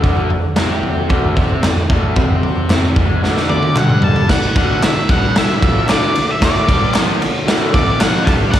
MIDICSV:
0, 0, Header, 1, 5, 480
1, 0, Start_track
1, 0, Tempo, 531444
1, 34, Time_signature, 4, 2, 24, 8
1, 7766, End_track
2, 0, Start_track
2, 0, Title_t, "Lead electric guitar"
2, 0, Program_c, 0, 29
2, 3157, Note_on_c, 0, 74, 86
2, 3384, Note_off_c, 0, 74, 0
2, 3413, Note_on_c, 0, 78, 96
2, 3632, Note_off_c, 0, 78, 0
2, 3647, Note_on_c, 0, 81, 85
2, 3869, Note_off_c, 0, 81, 0
2, 3882, Note_on_c, 0, 78, 109
2, 4106, Note_off_c, 0, 78, 0
2, 4135, Note_on_c, 0, 78, 82
2, 4369, Note_off_c, 0, 78, 0
2, 4372, Note_on_c, 0, 76, 97
2, 4591, Note_off_c, 0, 76, 0
2, 4610, Note_on_c, 0, 78, 84
2, 4853, Note_off_c, 0, 78, 0
2, 4859, Note_on_c, 0, 76, 85
2, 5297, Note_off_c, 0, 76, 0
2, 5331, Note_on_c, 0, 74, 86
2, 5696, Note_off_c, 0, 74, 0
2, 5696, Note_on_c, 0, 76, 81
2, 5811, Note_off_c, 0, 76, 0
2, 5822, Note_on_c, 0, 74, 87
2, 6258, Note_off_c, 0, 74, 0
2, 6991, Note_on_c, 0, 74, 92
2, 7223, Note_on_c, 0, 78, 100
2, 7241, Note_off_c, 0, 74, 0
2, 7445, Note_on_c, 0, 81, 85
2, 7477, Note_off_c, 0, 78, 0
2, 7514, Note_off_c, 0, 81, 0
2, 7692, Note_on_c, 0, 78, 121
2, 7766, Note_off_c, 0, 78, 0
2, 7766, End_track
3, 0, Start_track
3, 0, Title_t, "Transistor combo organ"
3, 0, Program_c, 1, 18
3, 10, Note_on_c, 1, 69, 92
3, 11, Note_on_c, 1, 66, 107
3, 25, Note_on_c, 1, 74, 117
3, 191, Note_off_c, 1, 69, 0
3, 192, Note_off_c, 1, 66, 0
3, 198, Note_off_c, 1, 74, 0
3, 269, Note_on_c, 1, 66, 82
3, 274, Note_on_c, 1, 69, 76
3, 275, Note_on_c, 1, 74, 89
3, 441, Note_off_c, 1, 66, 0
3, 444, Note_off_c, 1, 69, 0
3, 444, Note_off_c, 1, 74, 0
3, 509, Note_on_c, 1, 69, 80
3, 511, Note_on_c, 1, 66, 87
3, 513, Note_on_c, 1, 74, 86
3, 682, Note_off_c, 1, 69, 0
3, 683, Note_off_c, 1, 66, 0
3, 684, Note_off_c, 1, 74, 0
3, 767, Note_on_c, 1, 66, 84
3, 773, Note_on_c, 1, 69, 81
3, 778, Note_on_c, 1, 74, 91
3, 931, Note_off_c, 1, 66, 0
3, 934, Note_off_c, 1, 69, 0
3, 937, Note_off_c, 1, 74, 0
3, 979, Note_on_c, 1, 66, 113
3, 989, Note_on_c, 1, 74, 121
3, 991, Note_on_c, 1, 69, 95
3, 1157, Note_off_c, 1, 66, 0
3, 1162, Note_off_c, 1, 74, 0
3, 1163, Note_off_c, 1, 69, 0
3, 1240, Note_on_c, 1, 66, 93
3, 1248, Note_on_c, 1, 74, 91
3, 1249, Note_on_c, 1, 69, 88
3, 1409, Note_off_c, 1, 66, 0
3, 1412, Note_off_c, 1, 74, 0
3, 1413, Note_off_c, 1, 69, 0
3, 1486, Note_on_c, 1, 69, 75
3, 1491, Note_on_c, 1, 66, 82
3, 1494, Note_on_c, 1, 74, 91
3, 1652, Note_off_c, 1, 69, 0
3, 1654, Note_off_c, 1, 66, 0
3, 1656, Note_off_c, 1, 74, 0
3, 1704, Note_on_c, 1, 66, 87
3, 1709, Note_on_c, 1, 74, 101
3, 1715, Note_on_c, 1, 69, 75
3, 1881, Note_off_c, 1, 66, 0
3, 1884, Note_off_c, 1, 74, 0
3, 1887, Note_off_c, 1, 69, 0
3, 1953, Note_on_c, 1, 69, 94
3, 1956, Note_on_c, 1, 66, 110
3, 1957, Note_on_c, 1, 71, 124
3, 2126, Note_off_c, 1, 69, 0
3, 2127, Note_off_c, 1, 66, 0
3, 2128, Note_off_c, 1, 71, 0
3, 2179, Note_on_c, 1, 69, 75
3, 2188, Note_on_c, 1, 74, 91
3, 2192, Note_on_c, 1, 66, 76
3, 2359, Note_off_c, 1, 69, 0
3, 2364, Note_off_c, 1, 74, 0
3, 2366, Note_off_c, 1, 66, 0
3, 2427, Note_on_c, 1, 69, 69
3, 2429, Note_on_c, 1, 66, 83
3, 2430, Note_on_c, 1, 74, 94
3, 2603, Note_off_c, 1, 69, 0
3, 2605, Note_off_c, 1, 66, 0
3, 2605, Note_off_c, 1, 74, 0
3, 2647, Note_on_c, 1, 66, 75
3, 2656, Note_on_c, 1, 69, 76
3, 2660, Note_on_c, 1, 74, 94
3, 2834, Note_off_c, 1, 66, 0
3, 2838, Note_off_c, 1, 69, 0
3, 2840, Note_off_c, 1, 74, 0
3, 2903, Note_on_c, 1, 66, 104
3, 2908, Note_on_c, 1, 69, 90
3, 2908, Note_on_c, 1, 74, 121
3, 3082, Note_off_c, 1, 66, 0
3, 3084, Note_off_c, 1, 69, 0
3, 3084, Note_off_c, 1, 74, 0
3, 3133, Note_on_c, 1, 66, 89
3, 3135, Note_on_c, 1, 69, 80
3, 3143, Note_on_c, 1, 74, 96
3, 3317, Note_off_c, 1, 66, 0
3, 3318, Note_off_c, 1, 69, 0
3, 3378, Note_off_c, 1, 74, 0
3, 3387, Note_on_c, 1, 78, 73
3, 3390, Note_on_c, 1, 66, 81
3, 3390, Note_on_c, 1, 69, 71
3, 3394, Note_on_c, 1, 74, 85
3, 3565, Note_off_c, 1, 66, 0
3, 3565, Note_off_c, 1, 69, 0
3, 3567, Note_off_c, 1, 74, 0
3, 3618, Note_off_c, 1, 78, 0
3, 3637, Note_on_c, 1, 69, 79
3, 3644, Note_on_c, 1, 66, 82
3, 3644, Note_on_c, 1, 81, 69
3, 3650, Note_on_c, 1, 74, 101
3, 3809, Note_off_c, 1, 69, 0
3, 3812, Note_off_c, 1, 66, 0
3, 3815, Note_off_c, 1, 74, 0
3, 3863, Note_on_c, 1, 66, 97
3, 3867, Note_off_c, 1, 81, 0
3, 3873, Note_on_c, 1, 69, 88
3, 3882, Note_on_c, 1, 74, 102
3, 4042, Note_off_c, 1, 66, 0
3, 4047, Note_off_c, 1, 69, 0
3, 4051, Note_off_c, 1, 74, 0
3, 4125, Note_on_c, 1, 66, 66
3, 4131, Note_on_c, 1, 69, 64
3, 4131, Note_on_c, 1, 74, 70
3, 4293, Note_off_c, 1, 66, 0
3, 4296, Note_off_c, 1, 69, 0
3, 4296, Note_off_c, 1, 74, 0
3, 4364, Note_on_c, 1, 69, 66
3, 4369, Note_on_c, 1, 66, 66
3, 4377, Note_on_c, 1, 74, 81
3, 4532, Note_off_c, 1, 69, 0
3, 4534, Note_off_c, 1, 66, 0
3, 4538, Note_off_c, 1, 74, 0
3, 4594, Note_on_c, 1, 74, 83
3, 4599, Note_on_c, 1, 66, 78
3, 4600, Note_on_c, 1, 69, 75
3, 4767, Note_off_c, 1, 74, 0
3, 4769, Note_off_c, 1, 66, 0
3, 4770, Note_off_c, 1, 69, 0
3, 4829, Note_on_c, 1, 66, 91
3, 4829, Note_on_c, 1, 69, 83
3, 4833, Note_on_c, 1, 74, 99
3, 5004, Note_off_c, 1, 66, 0
3, 5004, Note_off_c, 1, 69, 0
3, 5006, Note_off_c, 1, 74, 0
3, 5069, Note_on_c, 1, 66, 76
3, 5074, Note_on_c, 1, 69, 74
3, 5081, Note_on_c, 1, 74, 85
3, 5244, Note_off_c, 1, 66, 0
3, 5246, Note_off_c, 1, 69, 0
3, 5249, Note_off_c, 1, 74, 0
3, 5289, Note_on_c, 1, 66, 73
3, 5291, Note_on_c, 1, 69, 65
3, 5293, Note_on_c, 1, 74, 77
3, 5473, Note_off_c, 1, 66, 0
3, 5474, Note_off_c, 1, 69, 0
3, 5475, Note_off_c, 1, 74, 0
3, 5542, Note_on_c, 1, 66, 77
3, 5544, Note_on_c, 1, 69, 67
3, 5555, Note_on_c, 1, 74, 84
3, 5719, Note_off_c, 1, 66, 0
3, 5720, Note_off_c, 1, 69, 0
3, 5726, Note_off_c, 1, 74, 0
3, 5815, Note_on_c, 1, 74, 110
3, 5817, Note_on_c, 1, 66, 99
3, 5817, Note_on_c, 1, 69, 86
3, 5976, Note_off_c, 1, 74, 0
3, 5977, Note_off_c, 1, 66, 0
3, 5977, Note_off_c, 1, 69, 0
3, 6042, Note_on_c, 1, 66, 69
3, 6046, Note_on_c, 1, 69, 68
3, 6051, Note_on_c, 1, 74, 86
3, 6209, Note_off_c, 1, 66, 0
3, 6211, Note_off_c, 1, 69, 0
3, 6213, Note_off_c, 1, 74, 0
3, 6251, Note_on_c, 1, 66, 74
3, 6262, Note_on_c, 1, 74, 86
3, 6265, Note_on_c, 1, 69, 67
3, 6433, Note_off_c, 1, 66, 0
3, 6438, Note_off_c, 1, 74, 0
3, 6440, Note_off_c, 1, 69, 0
3, 6503, Note_on_c, 1, 66, 96
3, 6514, Note_on_c, 1, 74, 97
3, 6515, Note_on_c, 1, 69, 80
3, 6678, Note_off_c, 1, 66, 0
3, 6684, Note_off_c, 1, 74, 0
3, 6685, Note_off_c, 1, 69, 0
3, 6742, Note_on_c, 1, 66, 116
3, 6748, Note_on_c, 1, 74, 124
3, 6750, Note_on_c, 1, 69, 112
3, 6918, Note_off_c, 1, 66, 0
3, 6921, Note_off_c, 1, 69, 0
3, 6921, Note_off_c, 1, 74, 0
3, 6981, Note_on_c, 1, 66, 83
3, 6994, Note_on_c, 1, 69, 74
3, 6998, Note_on_c, 1, 76, 93
3, 7157, Note_off_c, 1, 66, 0
3, 7163, Note_off_c, 1, 69, 0
3, 7165, Note_off_c, 1, 76, 0
3, 7231, Note_on_c, 1, 69, 67
3, 7234, Note_on_c, 1, 74, 88
3, 7237, Note_on_c, 1, 66, 84
3, 7402, Note_off_c, 1, 69, 0
3, 7403, Note_off_c, 1, 74, 0
3, 7404, Note_off_c, 1, 66, 0
3, 7458, Note_on_c, 1, 66, 72
3, 7470, Note_on_c, 1, 69, 75
3, 7476, Note_on_c, 1, 74, 82
3, 7635, Note_off_c, 1, 66, 0
3, 7641, Note_off_c, 1, 69, 0
3, 7644, Note_off_c, 1, 74, 0
3, 7710, Note_on_c, 1, 69, 88
3, 7713, Note_on_c, 1, 66, 104
3, 7727, Note_on_c, 1, 74, 109
3, 7766, Note_off_c, 1, 66, 0
3, 7766, Note_off_c, 1, 69, 0
3, 7766, Note_off_c, 1, 74, 0
3, 7766, End_track
4, 0, Start_track
4, 0, Title_t, "Overdriven electric guitar"
4, 0, Program_c, 2, 29
4, 26, Note_on_c, 2, 38, 94
4, 36, Note_on_c, 2, 50, 110
4, 264, Note_off_c, 2, 38, 0
4, 269, Note_off_c, 2, 50, 0
4, 275, Note_on_c, 2, 38, 71
4, 468, Note_off_c, 2, 38, 0
4, 508, Note_on_c, 2, 48, 74
4, 517, Note_on_c, 2, 60, 88
4, 982, Note_off_c, 2, 48, 0
4, 985, Note_on_c, 2, 38, 91
4, 991, Note_off_c, 2, 60, 0
4, 997, Note_on_c, 2, 50, 94
4, 1226, Note_off_c, 2, 38, 0
4, 1230, Note_on_c, 2, 48, 95
4, 1231, Note_off_c, 2, 50, 0
4, 1242, Note_on_c, 2, 60, 98
4, 1466, Note_off_c, 2, 48, 0
4, 1470, Note_on_c, 2, 38, 69
4, 1474, Note_off_c, 2, 60, 0
4, 1668, Note_off_c, 2, 38, 0
4, 1711, Note_on_c, 2, 38, 81
4, 1723, Note_on_c, 2, 50, 80
4, 1950, Note_off_c, 2, 38, 0
4, 1956, Note_off_c, 2, 50, 0
4, 1956, Note_on_c, 2, 48, 89
4, 1963, Note_on_c, 2, 60, 107
4, 2424, Note_off_c, 2, 48, 0
4, 2434, Note_off_c, 2, 60, 0
4, 2435, Note_on_c, 2, 48, 81
4, 2445, Note_on_c, 2, 60, 95
4, 2672, Note_off_c, 2, 48, 0
4, 2675, Note_on_c, 2, 44, 91
4, 2677, Note_off_c, 2, 60, 0
4, 2684, Note_on_c, 2, 56, 97
4, 2908, Note_off_c, 2, 44, 0
4, 2912, Note_on_c, 2, 38, 98
4, 2915, Note_off_c, 2, 56, 0
4, 2918, Note_on_c, 2, 50, 101
4, 3391, Note_off_c, 2, 38, 0
4, 3394, Note_off_c, 2, 50, 0
4, 3397, Note_on_c, 2, 43, 82
4, 3407, Note_on_c, 2, 55, 97
4, 3873, Note_off_c, 2, 43, 0
4, 3878, Note_off_c, 2, 55, 0
4, 3885, Note_on_c, 2, 38, 64
4, 4077, Note_off_c, 2, 38, 0
4, 4118, Note_on_c, 2, 38, 83
4, 4128, Note_on_c, 2, 50, 91
4, 4350, Note_off_c, 2, 38, 0
4, 4359, Note_off_c, 2, 50, 0
4, 4361, Note_on_c, 2, 38, 68
4, 4554, Note_off_c, 2, 38, 0
4, 4592, Note_on_c, 2, 43, 91
4, 4602, Note_on_c, 2, 55, 104
4, 5069, Note_off_c, 2, 43, 0
4, 5073, Note_on_c, 2, 41, 74
4, 5075, Note_off_c, 2, 55, 0
4, 5080, Note_on_c, 2, 53, 105
4, 5301, Note_off_c, 2, 41, 0
4, 5304, Note_on_c, 2, 38, 90
4, 5310, Note_off_c, 2, 53, 0
4, 5314, Note_on_c, 2, 50, 97
4, 5546, Note_off_c, 2, 38, 0
4, 5550, Note_off_c, 2, 50, 0
4, 5561, Note_on_c, 2, 38, 65
4, 5753, Note_off_c, 2, 38, 0
4, 5791, Note_on_c, 2, 45, 104
4, 5802, Note_on_c, 2, 57, 104
4, 6028, Note_off_c, 2, 45, 0
4, 6034, Note_off_c, 2, 57, 0
4, 6035, Note_on_c, 2, 43, 85
4, 6045, Note_on_c, 2, 55, 104
4, 6264, Note_off_c, 2, 43, 0
4, 6267, Note_on_c, 2, 41, 82
4, 6275, Note_off_c, 2, 55, 0
4, 6281, Note_on_c, 2, 53, 107
4, 6505, Note_off_c, 2, 41, 0
4, 6513, Note_off_c, 2, 53, 0
4, 6513, Note_on_c, 2, 38, 84
4, 6707, Note_off_c, 2, 38, 0
4, 6738, Note_on_c, 2, 38, 98
4, 6752, Note_on_c, 2, 50, 99
4, 6980, Note_off_c, 2, 38, 0
4, 6987, Note_off_c, 2, 50, 0
4, 6988, Note_on_c, 2, 41, 99
4, 6995, Note_on_c, 2, 53, 95
4, 7463, Note_off_c, 2, 41, 0
4, 7466, Note_off_c, 2, 53, 0
4, 7467, Note_on_c, 2, 43, 71
4, 7470, Note_on_c, 2, 55, 95
4, 7703, Note_off_c, 2, 43, 0
4, 7705, Note_off_c, 2, 55, 0
4, 7707, Note_on_c, 2, 38, 74
4, 7766, Note_off_c, 2, 38, 0
4, 7766, End_track
5, 0, Start_track
5, 0, Title_t, "Drums"
5, 34, Note_on_c, 9, 36, 94
5, 34, Note_on_c, 9, 43, 74
5, 124, Note_off_c, 9, 36, 0
5, 124, Note_off_c, 9, 43, 0
5, 273, Note_on_c, 9, 43, 57
5, 363, Note_off_c, 9, 43, 0
5, 506, Note_on_c, 9, 43, 83
5, 510, Note_on_c, 9, 38, 105
5, 517, Note_on_c, 9, 39, 83
5, 597, Note_off_c, 9, 43, 0
5, 600, Note_off_c, 9, 38, 0
5, 607, Note_off_c, 9, 39, 0
5, 751, Note_on_c, 9, 43, 58
5, 841, Note_off_c, 9, 43, 0
5, 990, Note_on_c, 9, 43, 72
5, 995, Note_on_c, 9, 36, 103
5, 1080, Note_off_c, 9, 43, 0
5, 1085, Note_off_c, 9, 36, 0
5, 1232, Note_on_c, 9, 43, 63
5, 1235, Note_on_c, 9, 36, 102
5, 1322, Note_off_c, 9, 43, 0
5, 1325, Note_off_c, 9, 36, 0
5, 1471, Note_on_c, 9, 43, 73
5, 1474, Note_on_c, 9, 38, 92
5, 1480, Note_on_c, 9, 39, 88
5, 1561, Note_off_c, 9, 43, 0
5, 1565, Note_off_c, 9, 38, 0
5, 1570, Note_off_c, 9, 39, 0
5, 1714, Note_on_c, 9, 36, 119
5, 1714, Note_on_c, 9, 43, 66
5, 1804, Note_off_c, 9, 43, 0
5, 1805, Note_off_c, 9, 36, 0
5, 1951, Note_on_c, 9, 43, 89
5, 1955, Note_on_c, 9, 36, 111
5, 2041, Note_off_c, 9, 43, 0
5, 2045, Note_off_c, 9, 36, 0
5, 2197, Note_on_c, 9, 43, 70
5, 2287, Note_off_c, 9, 43, 0
5, 2438, Note_on_c, 9, 43, 87
5, 2440, Note_on_c, 9, 39, 84
5, 2442, Note_on_c, 9, 38, 115
5, 2529, Note_off_c, 9, 43, 0
5, 2530, Note_off_c, 9, 39, 0
5, 2532, Note_off_c, 9, 38, 0
5, 2676, Note_on_c, 9, 36, 109
5, 2677, Note_on_c, 9, 43, 67
5, 2767, Note_off_c, 9, 36, 0
5, 2767, Note_off_c, 9, 43, 0
5, 2926, Note_on_c, 9, 38, 54
5, 3016, Note_off_c, 9, 38, 0
5, 3042, Note_on_c, 9, 38, 55
5, 3133, Note_off_c, 9, 38, 0
5, 3156, Note_on_c, 9, 48, 76
5, 3246, Note_off_c, 9, 48, 0
5, 3276, Note_on_c, 9, 48, 63
5, 3366, Note_off_c, 9, 48, 0
5, 3392, Note_on_c, 9, 47, 80
5, 3401, Note_on_c, 9, 39, 83
5, 3483, Note_off_c, 9, 47, 0
5, 3491, Note_off_c, 9, 39, 0
5, 3518, Note_on_c, 9, 45, 79
5, 3608, Note_off_c, 9, 45, 0
5, 3630, Note_on_c, 9, 43, 103
5, 3721, Note_off_c, 9, 43, 0
5, 3758, Note_on_c, 9, 43, 87
5, 3848, Note_off_c, 9, 43, 0
5, 3877, Note_on_c, 9, 49, 113
5, 3878, Note_on_c, 9, 36, 98
5, 3881, Note_on_c, 9, 38, 114
5, 3967, Note_off_c, 9, 49, 0
5, 3968, Note_off_c, 9, 36, 0
5, 3971, Note_off_c, 9, 38, 0
5, 4115, Note_on_c, 9, 51, 75
5, 4117, Note_on_c, 9, 36, 114
5, 4206, Note_off_c, 9, 51, 0
5, 4207, Note_off_c, 9, 36, 0
5, 4363, Note_on_c, 9, 51, 87
5, 4366, Note_on_c, 9, 38, 106
5, 4366, Note_on_c, 9, 39, 85
5, 4453, Note_off_c, 9, 51, 0
5, 4456, Note_off_c, 9, 39, 0
5, 4457, Note_off_c, 9, 38, 0
5, 4599, Note_on_c, 9, 36, 120
5, 4599, Note_on_c, 9, 51, 72
5, 4689, Note_off_c, 9, 36, 0
5, 4689, Note_off_c, 9, 51, 0
5, 4839, Note_on_c, 9, 51, 94
5, 4842, Note_on_c, 9, 38, 112
5, 4929, Note_off_c, 9, 51, 0
5, 4933, Note_off_c, 9, 38, 0
5, 5080, Note_on_c, 9, 36, 111
5, 5084, Note_on_c, 9, 51, 67
5, 5171, Note_off_c, 9, 36, 0
5, 5174, Note_off_c, 9, 51, 0
5, 5318, Note_on_c, 9, 39, 85
5, 5319, Note_on_c, 9, 51, 85
5, 5322, Note_on_c, 9, 38, 105
5, 5409, Note_off_c, 9, 39, 0
5, 5409, Note_off_c, 9, 51, 0
5, 5413, Note_off_c, 9, 38, 0
5, 5559, Note_on_c, 9, 51, 80
5, 5649, Note_off_c, 9, 51, 0
5, 5796, Note_on_c, 9, 51, 109
5, 5798, Note_on_c, 9, 36, 93
5, 5800, Note_on_c, 9, 38, 105
5, 5887, Note_off_c, 9, 51, 0
5, 5889, Note_off_c, 9, 36, 0
5, 5890, Note_off_c, 9, 38, 0
5, 6039, Note_on_c, 9, 36, 104
5, 6040, Note_on_c, 9, 51, 73
5, 6129, Note_off_c, 9, 36, 0
5, 6130, Note_off_c, 9, 51, 0
5, 6271, Note_on_c, 9, 39, 89
5, 6277, Note_on_c, 9, 51, 103
5, 6280, Note_on_c, 9, 38, 102
5, 6361, Note_off_c, 9, 39, 0
5, 6367, Note_off_c, 9, 51, 0
5, 6371, Note_off_c, 9, 38, 0
5, 6519, Note_on_c, 9, 51, 81
5, 6610, Note_off_c, 9, 51, 0
5, 6756, Note_on_c, 9, 51, 98
5, 6760, Note_on_c, 9, 38, 111
5, 6847, Note_off_c, 9, 51, 0
5, 6850, Note_off_c, 9, 38, 0
5, 6989, Note_on_c, 9, 51, 75
5, 6991, Note_on_c, 9, 36, 98
5, 7079, Note_off_c, 9, 51, 0
5, 7081, Note_off_c, 9, 36, 0
5, 7230, Note_on_c, 9, 51, 96
5, 7234, Note_on_c, 9, 38, 111
5, 7234, Note_on_c, 9, 39, 88
5, 7320, Note_off_c, 9, 51, 0
5, 7324, Note_off_c, 9, 38, 0
5, 7324, Note_off_c, 9, 39, 0
5, 7472, Note_on_c, 9, 36, 113
5, 7477, Note_on_c, 9, 51, 84
5, 7562, Note_off_c, 9, 36, 0
5, 7567, Note_off_c, 9, 51, 0
5, 7708, Note_on_c, 9, 51, 96
5, 7710, Note_on_c, 9, 36, 115
5, 7712, Note_on_c, 9, 38, 98
5, 7766, Note_off_c, 9, 36, 0
5, 7766, Note_off_c, 9, 38, 0
5, 7766, Note_off_c, 9, 51, 0
5, 7766, End_track
0, 0, End_of_file